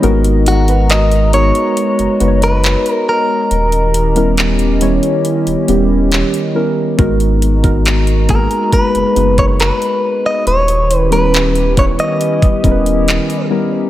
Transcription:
0.00 1.51 G#1 loud
0.00 0.61 G#3 loud
0.00 3.48 G#3 medium
0.00 0.61 B3 medium
0.00 0.61 D#4 medium
0.00 0.61 F#4 loud
0.00 3.48 F#4 medium
0.00 0.61 A#4 loud
0.00 13.90 D#5 medium
0.00 3.48 A#5 medium
0.00 closed hi-hat medium
0.24 closed hi-hat medium
0.46 0.92 F#4 medium
0.46 closed hi-hat medium
0.68 1.26 G#3 medium
0.68 1.26 B3 medium
0.68 1.26 D#4 medium
0.68 1.27 F#4 medium
0.68 1.27 B4 medium
0.68 closed hi-hat medium
0.90 1.31 D#5 loud
0.90 clap loud
0.90 closed hi-hat medium
1.12 closed hi-hat soft
1.33 2.10 G#3 medium
1.33 2.11 B3 medium
1.33 2.11 D#4 medium
1.33 2.11 F#4 medium
1.33 2.11 A#4 medium
1.33 2.43 C#5 medium
1.33 closed hi-hat medium
1.55 closed hi-hat soft
1.77 closed hi-hat medium
1.99 2.08 F#1 soft
1.99 closed hi-hat soft
2.20 2.75 F#1 medium
2.20 3.50 G#3 medium
2.20 3.51 B3 medium
2.20 3.51 D#4 medium
2.20 3.51 F#4 medium
2.20 2.27 B4 medium
2.20 closed hi-hat medium
2.28 3.55 C#5 medium
2.42 2.91 B4 medium
2.42 closed hi-hat medium
2.64 clap loud
2.64 closed hi-hat medium
2.86 closed hi-hat soft
2.91 3.09 A#4 medium
3.09 4.35 A#4 medium
3.51 4.99 D#1 loud
3.51 6.96 D#3 medium
3.51 6.96 C#4 medium
3.51 6.96 E4 medium
3.51 6.96 G4 medium
3.51 closed hi-hat medium
3.72 closed hi-hat medium
3.94 closed hi-hat medium
4.16 4.74 G3 medium
4.16 4.74 B3 medium
4.16 4.74 C#4 medium
4.16 4.74 E4 medium
4.16 4.75 A#4 medium
4.16 closed hi-hat medium
4.37 clap loud
4.37 closed hi-hat medium
4.59 closed hi-hat soft
4.81 5.58 G3 medium
4.81 5.58 B3 medium
4.81 5.59 C#4 medium
4.81 5.59 E4 medium
4.81 5.59 C#5 loud
4.81 closed hi-hat medium
5.03 closed hi-hat soft
5.25 closed hi-hat medium
5.47 5.55 D#1 soft
5.47 closed hi-hat soft
5.67 6.23 D#1 loud
5.67 6.45 G3 medium
5.67 6.45 B3 medium
5.67 6.46 C#4 medium
5.67 6.46 E4 medium
5.67 6.46 G4 medium
5.67 closed hi-hat medium
6.12 clap loud
6.12 closed hi-hat medium
6.34 closed hi-hat soft
6.54 6.93 G3 medium
6.54 6.94 B3 medium
6.54 6.94 C#4 medium
6.54 6.94 E4 medium
6.54 6.94 A#4 medium
6.97 8.47 G#1 loud
6.97 7.56 G#3 loud
6.97 10.44 G#3 medium
6.97 7.56 B3 medium
6.97 7.57 D#4 medium
6.97 7.57 F#4 medium
6.97 10.44 F#4 medium
6.97 7.57 A#4 loud
6.97 10.44 A#5 medium
6.97 kick loud
6.97 closed hi-hat medium
7.20 closed hi-hat soft
7.42 closed hi-hat medium
7.63 8.21 G#3 medium
7.63 8.21 B3 medium
7.63 8.22 D#4 medium
7.63 8.22 F#4 medium
7.63 8.22 A#4 medium
7.63 kick medium
7.63 closed hi-hat medium
7.85 clap loud
7.85 closed hi-hat medium
8.07 closed hi-hat soft
8.28 9.06 G#3 medium
8.28 8.35 A#3 medium
8.28 9.06 D#4 medium
8.28 9.07 F#4 medium
8.28 9.07 G#4 medium
8.28 8.73 A#4 medium
8.28 kick medium
8.28 closed hi-hat medium
8.35 9.09 B3 medium
8.51 closed hi-hat soft
8.72 9.39 B4 medium
8.72 kick medium
8.72 closed hi-hat medium
8.95 9.04 F#1 soft
8.95 closed hi-hat soft
9.15 9.71 F#1 loud
9.15 10.46 G#3 medium
9.15 10.46 B3 medium
9.15 10.46 D#4 medium
9.15 10.47 F#4 medium
9.15 10.47 B4 medium
9.15 closed hi-hat medium
9.38 9.45 C#5 medium
9.38 kick medium
9.38 closed hi-hat medium
9.60 10.26 B4 medium
9.60 clap loud
9.60 closed hi-hat medium
9.82 closed hi-hat soft
10.26 10.47 D#5 loud
10.46 11.95 D#1 loud
10.46 13.90 D#3 medium
10.46 13.90 C#4 medium
10.46 13.90 E4 medium
10.46 13.90 G4 medium
10.46 10.98 C#5 loud
10.46 closed hi-hat medium
10.68 closed hi-hat medium
10.91 closed hi-hat medium
10.98 11.12 B4 loud
11.10 11.69 G3 medium
11.10 11.69 B3 medium
11.10 11.69 C#4 medium
11.10 11.70 E4 medium
11.10 11.70 B4 medium
11.10 11.73 B4 medium
11.10 closed hi-hat medium
11.34 clap loud
11.34 closed hi-hat medium
11.55 closed hi-hat soft
11.76 12.54 G3 medium
11.76 12.54 B3 medium
11.76 12.54 C#4 medium
11.76 12.54 E4 medium
11.76 12.55 B4 medium
11.76 11.85 C#5 medium
11.76 kick medium
11.76 closed hi-hat medium
11.99 13.48 D#5 medium
11.99 closed hi-hat soft
12.21 closed hi-hat medium
12.42 12.51 D#1 soft
12.42 kick loud
12.42 closed hi-hat soft
12.63 13.19 D#1 medium
12.63 13.41 G3 medium
12.63 13.41 B3 medium
12.63 13.41 C#4 medium
12.63 13.41 E4 medium
12.63 12.71 A#4 medium
12.63 kick medium
12.63 closed hi-hat medium
12.71 13.45 B4 medium
12.86 closed hi-hat medium
13.08 clap loud
13.08 closed hi-hat medium
13.30 closed hi-hat soft
13.50 13.89 G3 medium
13.50 13.89 B3 medium
13.50 13.90 C#4 medium
13.50 13.90 E4 medium
13.50 13.90 A#4 medium

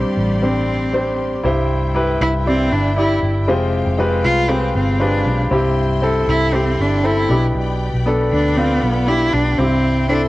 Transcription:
0.00 1.44 G2 medium
0.00 1.46 D3 medium
0.00 0.42 G3 medium
0.00 0.45 G3 medium
0.00 0.42 C4 medium
0.00 0.43 D4 medium
0.00 1.40 G4 medium
0.00 0.43 C5 medium
0.00 1.42 D5 medium
0.00 1.40 C6 medium
0.17 1.40 A1 medium
0.42 0.80 G3 medium
0.42 0.80 C4 medium
0.42 1.19 C4 medium
0.42 0.81 D4 medium
0.42 0.81 C5 medium
0.93 1.31 G3 medium
0.93 1.31 C4 medium
0.93 1.31 D4 medium
0.93 1.32 C5 medium
1.44 2.17 C2 loud
1.44 2.17 G2 medium
1.44 1.82 E4 medium
1.44 1.82 G4 medium
1.44 1.83 C5 loud
1.44 3.46 E5 medium
1.44 5.48 G5 medium
1.95 2.33 E4 medium
1.95 2.33 G4 medium
1.95 2.33 B4 loud
2.21 2.68 C2 medium
2.21 2.33 E4 loud
2.45 2.74 C4 loud
2.45 2.84 E4 medium
2.45 2.84 G4 medium
2.45 2.84 D5 medium
2.72 3.19 G1 medium
2.72 2.96 D4 medium
2.96 3.34 E4 medium
2.96 3.32 E4 medium
2.96 3.35 G4 medium
2.96 3.35 D5 medium
3.22 3.48 G1 medium
3.47 3.83 F1 loud
3.47 4.20 C3 medium
3.47 3.86 G#3 medium
3.47 3.86 C4 medium
3.47 3.86 F4 medium
3.47 3.86 G4 medium
3.47 3.87 C5 loud
3.47 5.49 F5 medium
3.86 4.22 F1 medium
3.98 4.36 G#3 medium
3.98 4.37 C4 medium
3.98 4.37 F4 medium
3.98 4.37 G4 medium
3.98 4.37 B4 loud
4.24 4.72 C2 medium
4.24 4.52 F4 loud
4.49 4.87 G#3 medium
4.49 4.87 C4 medium
4.49 4.75 C4 loud
4.49 4.87 F4 medium
4.49 4.88 G4 medium
4.49 4.88 B4 medium
4.75 5.22 G1 loud
4.75 5.03 C4 medium
5.00 5.38 G#3 medium
5.00 5.38 C4 medium
5.00 5.39 D4 medium
5.00 5.38 F4 medium
5.00 5.39 G4 medium
5.00 5.39 B4 medium
5.26 5.50 B1 medium
5.51 6.24 C2 loud
5.51 6.24 G2 medium
5.51 5.89 C4 medium
5.51 5.89 E4 medium
5.51 5.90 G4 loud
5.51 7.28 E5 medium
5.51 10.28 G5 medium
5.51 7.28 C6 medium
6.02 6.40 C4 medium
6.02 6.40 E4 medium
6.02 6.41 A4 loud
6.28 6.75 C2 loud
6.28 6.56 E4 loud
6.53 6.91 C4 medium
6.53 6.83 C4 loud
6.53 6.91 E4 medium
6.53 6.92 G4 medium
6.79 7.26 G1 medium
6.79 7.08 D4 medium
7.04 7.29 C4 medium
7.04 7.30 E4 medium
7.04 7.43 E4 medium
7.04 7.30 A4 medium
7.29 7.53 B1 loud
7.29 8.02 B2 medium
7.29 7.90 B3 medium
7.29 7.91 D4 medium
7.29 7.91 G4 medium
7.29 9.57 D5 medium
7.29 9.56 B5 medium
7.55 7.90 B1 loud
7.94 8.29 B1 medium
8.06 8.44 B3 medium
8.06 8.44 D4 medium
8.06 8.45 A4 loud
8.32 8.79 D2 loud
8.32 8.58 D4 medium
8.57 8.95 B3 medium
8.57 8.84 C4 loud
8.57 8.95 D4 medium
8.57 8.95 F4 medium
8.83 9.30 B1 medium
8.83 9.09 B3 medium
9.07 9.45 B3 medium
9.07 9.45 D4 medium
9.07 9.34 E4 loud
9.07 9.46 G4 medium
9.33 9.57 B1 medium
9.33 9.60 D4 loud
9.58 10.28 C2 loud
9.58 10.28 G2 medium
9.58 10.08 C4 loud
9.58 9.96 C4 medium
9.58 9.97 E4 medium
9.58 9.97 G4 medium
9.58 10.28 E5 medium
9.58 10.28 C6 medium
10.09 10.28 C4 medium
10.09 10.20 D4 loud
10.09 10.28 E4 medium
10.09 10.28 A4 medium

